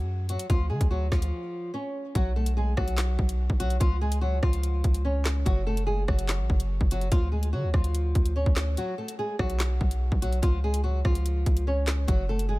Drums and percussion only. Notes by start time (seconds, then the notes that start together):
0.29 closed hi-hat
0.39 closed hi-hat
0.50 kick, closed hi-hat
0.81 kick, closed hi-hat
1.12 kick, cross-stick, snare
1.22 closed hi-hat
2.15 kick, closed hi-hat
2.46 closed hi-hat
2.77 kick, cross-stick
2.88 closed hi-hat
2.98 snare, clap, closed hi-hat
3.19 kick
3.29 closed hi-hat
3.50 kick
3.60 closed hi-hat
3.70 closed hi-hat
3.81 kick, closed hi-hat
4.12 closed hi-hat
4.43 kick, cross-stick
4.53 closed hi-hat
4.63 closed hi-hat
4.84 kick, closed hi-hat
4.94 closed hi-hat
5.25 snare, clap, closed hi-hat
5.46 kick, closed hi-hat
5.77 closed hi-hat
6.08 kick, cross-stick
6.19 closed hi-hat
6.29 snare, clap, closed hi-hat
6.50 kick
6.60 closed hi-hat
6.81 kick
6.91 closed hi-hat
7.01 closed hi-hat
7.12 kick, closed hi-hat
7.43 closed hi-hat
7.74 kick, cross-stick
7.84 closed hi-hat
7.95 closed hi-hat
8.15 kick, closed hi-hat
8.26 closed hi-hat
8.46 kick
8.56 cross-stick, snare, clap, closed hi-hat
8.77 closed hi-hat
9.08 closed hi-hat
9.39 kick, cross-stick
9.50 closed hi-hat
9.60 snare, clap, closed hi-hat
9.81 kick
9.91 closed hi-hat
10.12 kick
10.22 closed hi-hat
10.32 closed hi-hat
10.43 kick, closed hi-hat
10.74 closed hi-hat
11.05 kick, cross-stick
11.15 closed hi-hat
11.26 closed hi-hat
11.46 kick, closed hi-hat
11.57 closed hi-hat
11.87 snare, clap, closed hi-hat
12.08 kick, closed hi-hat
12.39 closed hi-hat